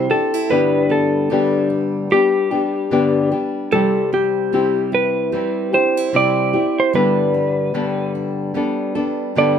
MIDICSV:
0, 0, Header, 1, 4, 480
1, 0, Start_track
1, 0, Key_signature, 0, "major"
1, 0, Tempo, 804290
1, 303, Time_signature, 4, 2, 24, 8
1, 5723, End_track
2, 0, Start_track
2, 0, Title_t, "Electric slide guitar"
2, 0, Program_c, 0, 29
2, 0, Note_on_c, 0, 72, 81
2, 65, Note_on_c, 0, 69, 74
2, 78, Note_off_c, 0, 72, 0
2, 301, Note_on_c, 0, 71, 85
2, 311, Note_off_c, 0, 69, 0
2, 546, Note_on_c, 0, 69, 66
2, 549, Note_off_c, 0, 71, 0
2, 1000, Note_off_c, 0, 69, 0
2, 1265, Note_on_c, 0, 67, 92
2, 1960, Note_off_c, 0, 67, 0
2, 2223, Note_on_c, 0, 69, 80
2, 2446, Note_off_c, 0, 69, 0
2, 2470, Note_on_c, 0, 67, 73
2, 2922, Note_off_c, 0, 67, 0
2, 2951, Note_on_c, 0, 71, 78
2, 3425, Note_off_c, 0, 71, 0
2, 3427, Note_on_c, 0, 72, 81
2, 3672, Note_off_c, 0, 72, 0
2, 3678, Note_on_c, 0, 74, 93
2, 4056, Note_on_c, 0, 72, 88
2, 4066, Note_off_c, 0, 74, 0
2, 4148, Note_off_c, 0, 72, 0
2, 4150, Note_on_c, 0, 71, 85
2, 4843, Note_off_c, 0, 71, 0
2, 5600, Note_on_c, 0, 74, 86
2, 5723, Note_off_c, 0, 74, 0
2, 5723, End_track
3, 0, Start_track
3, 0, Title_t, "Steel-string acoustic guitar"
3, 0, Program_c, 1, 25
3, 0, Note_on_c, 1, 52, 63
3, 0, Note_on_c, 1, 67, 53
3, 58, Note_on_c, 1, 62, 50
3, 202, Note_off_c, 1, 62, 0
3, 202, Note_on_c, 1, 64, 44
3, 303, Note_off_c, 1, 52, 0
3, 358, Note_off_c, 1, 64, 0
3, 534, Note_on_c, 1, 59, 52
3, 773, Note_off_c, 1, 67, 0
3, 1014, Note_on_c, 1, 62, 51
3, 1247, Note_off_c, 1, 59, 0
3, 1492, Note_off_c, 1, 62, 0
3, 2462, Note_on_c, 1, 60, 55
3, 2936, Note_on_c, 1, 64, 53
3, 3169, Note_off_c, 1, 60, 0
3, 3419, Note_off_c, 1, 64, 0
3, 3422, Note_on_c, 1, 62, 55
3, 3564, Note_off_c, 1, 62, 0
3, 3564, Note_on_c, 1, 64, 45
3, 3892, Note_off_c, 1, 64, 0
3, 4381, Note_on_c, 1, 59, 50
3, 4863, Note_on_c, 1, 62, 50
3, 5095, Note_off_c, 1, 59, 0
3, 5336, Note_off_c, 1, 62, 0
3, 5723, End_track
4, 0, Start_track
4, 0, Title_t, "Nylon-string guitar"
4, 0, Program_c, 2, 24
4, 0, Note_on_c, 2, 48, 67
4, 0, Note_on_c, 2, 55, 74
4, 0, Note_on_c, 2, 60, 64
4, 59, Note_on_c, 2, 67, 45
4, 62, Note_off_c, 2, 48, 0
4, 64, Note_off_c, 2, 55, 0
4, 64, Note_off_c, 2, 60, 0
4, 66, Note_on_c, 2, 64, 42
4, 73, Note_on_c, 2, 60, 37
4, 297, Note_on_c, 2, 43, 64
4, 301, Note_off_c, 2, 67, 0
4, 301, Note_on_c, 2, 50, 65
4, 303, Note_off_c, 2, 60, 0
4, 305, Note_off_c, 2, 64, 0
4, 305, Note_on_c, 2, 55, 62
4, 306, Note_on_c, 2, 59, 61
4, 308, Note_on_c, 2, 62, 66
4, 310, Note_on_c, 2, 67, 69
4, 773, Note_off_c, 2, 43, 0
4, 776, Note_off_c, 2, 50, 0
4, 780, Note_off_c, 2, 59, 0
4, 780, Note_on_c, 2, 43, 63
4, 782, Note_off_c, 2, 55, 0
4, 782, Note_off_c, 2, 62, 0
4, 784, Note_on_c, 2, 50, 58
4, 784, Note_on_c, 2, 55, 65
4, 787, Note_on_c, 2, 59, 72
4, 789, Note_off_c, 2, 67, 0
4, 790, Note_on_c, 2, 62, 76
4, 792, Note_on_c, 2, 67, 68
4, 1255, Note_off_c, 2, 55, 0
4, 1257, Note_off_c, 2, 59, 0
4, 1257, Note_on_c, 2, 55, 56
4, 1261, Note_off_c, 2, 43, 0
4, 1261, Note_off_c, 2, 62, 0
4, 1263, Note_off_c, 2, 50, 0
4, 1264, Note_on_c, 2, 59, 60
4, 1268, Note_on_c, 2, 62, 61
4, 1272, Note_off_c, 2, 67, 0
4, 1274, Note_on_c, 2, 67, 65
4, 1489, Note_off_c, 2, 67, 0
4, 1494, Note_off_c, 2, 62, 0
4, 1496, Note_on_c, 2, 67, 48
4, 1500, Note_off_c, 2, 55, 0
4, 1500, Note_off_c, 2, 59, 0
4, 1501, Note_on_c, 2, 62, 44
4, 1507, Note_on_c, 2, 59, 40
4, 1513, Note_on_c, 2, 55, 39
4, 1734, Note_off_c, 2, 55, 0
4, 1737, Note_off_c, 2, 59, 0
4, 1737, Note_on_c, 2, 43, 64
4, 1739, Note_off_c, 2, 67, 0
4, 1739, Note_on_c, 2, 50, 65
4, 1740, Note_off_c, 2, 62, 0
4, 1741, Note_on_c, 2, 55, 67
4, 1744, Note_on_c, 2, 59, 81
4, 1747, Note_on_c, 2, 62, 76
4, 1747, Note_on_c, 2, 67, 72
4, 1971, Note_off_c, 2, 67, 0
4, 1979, Note_off_c, 2, 62, 0
4, 1979, Note_on_c, 2, 67, 50
4, 1980, Note_off_c, 2, 43, 0
4, 1981, Note_off_c, 2, 50, 0
4, 1982, Note_off_c, 2, 55, 0
4, 1983, Note_off_c, 2, 59, 0
4, 1987, Note_on_c, 2, 62, 46
4, 1991, Note_on_c, 2, 59, 47
4, 1996, Note_on_c, 2, 55, 43
4, 2218, Note_off_c, 2, 55, 0
4, 2220, Note_off_c, 2, 67, 0
4, 2221, Note_on_c, 2, 48, 58
4, 2224, Note_off_c, 2, 59, 0
4, 2224, Note_off_c, 2, 62, 0
4, 2225, Note_on_c, 2, 55, 64
4, 2227, Note_on_c, 2, 60, 70
4, 2230, Note_on_c, 2, 64, 66
4, 2232, Note_on_c, 2, 67, 63
4, 2693, Note_off_c, 2, 48, 0
4, 2700, Note_off_c, 2, 60, 0
4, 2700, Note_on_c, 2, 48, 67
4, 2701, Note_off_c, 2, 55, 0
4, 2701, Note_off_c, 2, 64, 0
4, 2704, Note_on_c, 2, 55, 63
4, 2707, Note_on_c, 2, 60, 67
4, 2708, Note_off_c, 2, 67, 0
4, 2708, Note_on_c, 2, 64, 73
4, 2710, Note_on_c, 2, 67, 69
4, 3178, Note_off_c, 2, 55, 0
4, 3180, Note_on_c, 2, 55, 60
4, 3181, Note_off_c, 2, 48, 0
4, 3181, Note_off_c, 2, 60, 0
4, 3183, Note_off_c, 2, 64, 0
4, 3188, Note_on_c, 2, 60, 55
4, 3190, Note_on_c, 2, 64, 60
4, 3194, Note_off_c, 2, 67, 0
4, 3196, Note_on_c, 2, 67, 65
4, 3410, Note_off_c, 2, 67, 0
4, 3417, Note_on_c, 2, 67, 53
4, 3420, Note_off_c, 2, 64, 0
4, 3421, Note_off_c, 2, 55, 0
4, 3425, Note_off_c, 2, 60, 0
4, 3427, Note_on_c, 2, 64, 43
4, 3433, Note_on_c, 2, 60, 38
4, 3659, Note_off_c, 2, 60, 0
4, 3660, Note_off_c, 2, 67, 0
4, 3660, Note_on_c, 2, 48, 76
4, 3662, Note_off_c, 2, 64, 0
4, 3663, Note_on_c, 2, 55, 74
4, 3666, Note_on_c, 2, 60, 78
4, 3669, Note_on_c, 2, 64, 83
4, 3671, Note_on_c, 2, 67, 81
4, 3892, Note_off_c, 2, 67, 0
4, 3899, Note_on_c, 2, 67, 46
4, 3901, Note_off_c, 2, 48, 0
4, 3901, Note_off_c, 2, 64, 0
4, 3903, Note_off_c, 2, 55, 0
4, 3904, Note_off_c, 2, 60, 0
4, 3908, Note_on_c, 2, 64, 43
4, 3915, Note_on_c, 2, 60, 40
4, 4141, Note_off_c, 2, 67, 0
4, 4142, Note_on_c, 2, 43, 69
4, 4144, Note_on_c, 2, 50, 66
4, 4145, Note_off_c, 2, 60, 0
4, 4145, Note_on_c, 2, 55, 75
4, 4146, Note_off_c, 2, 64, 0
4, 4148, Note_on_c, 2, 59, 67
4, 4151, Note_on_c, 2, 62, 70
4, 4152, Note_on_c, 2, 69, 77
4, 4611, Note_off_c, 2, 43, 0
4, 4614, Note_off_c, 2, 50, 0
4, 4618, Note_off_c, 2, 59, 0
4, 4618, Note_on_c, 2, 43, 65
4, 4619, Note_off_c, 2, 62, 0
4, 4620, Note_off_c, 2, 55, 0
4, 4621, Note_off_c, 2, 69, 0
4, 4621, Note_on_c, 2, 50, 65
4, 4623, Note_on_c, 2, 55, 75
4, 4626, Note_on_c, 2, 59, 65
4, 4626, Note_on_c, 2, 62, 66
4, 4628, Note_on_c, 2, 69, 75
4, 5095, Note_off_c, 2, 55, 0
4, 5097, Note_off_c, 2, 59, 0
4, 5098, Note_on_c, 2, 55, 65
4, 5101, Note_off_c, 2, 43, 0
4, 5102, Note_off_c, 2, 50, 0
4, 5104, Note_off_c, 2, 62, 0
4, 5105, Note_on_c, 2, 59, 60
4, 5106, Note_off_c, 2, 69, 0
4, 5111, Note_on_c, 2, 62, 68
4, 5114, Note_on_c, 2, 69, 66
4, 5335, Note_off_c, 2, 69, 0
4, 5340, Note_off_c, 2, 55, 0
4, 5340, Note_off_c, 2, 62, 0
4, 5342, Note_on_c, 2, 69, 58
4, 5344, Note_off_c, 2, 59, 0
4, 5348, Note_on_c, 2, 62, 53
4, 5353, Note_on_c, 2, 59, 45
4, 5357, Note_on_c, 2, 55, 42
4, 5582, Note_off_c, 2, 69, 0
4, 5585, Note_off_c, 2, 55, 0
4, 5585, Note_off_c, 2, 62, 0
4, 5586, Note_off_c, 2, 59, 0
4, 5587, Note_on_c, 2, 43, 82
4, 5588, Note_on_c, 2, 50, 68
4, 5592, Note_on_c, 2, 55, 78
4, 5593, Note_on_c, 2, 59, 88
4, 5595, Note_on_c, 2, 62, 89
4, 5598, Note_on_c, 2, 69, 84
4, 5723, Note_off_c, 2, 43, 0
4, 5723, Note_off_c, 2, 50, 0
4, 5723, Note_off_c, 2, 55, 0
4, 5723, Note_off_c, 2, 59, 0
4, 5723, Note_off_c, 2, 62, 0
4, 5723, Note_off_c, 2, 69, 0
4, 5723, End_track
0, 0, End_of_file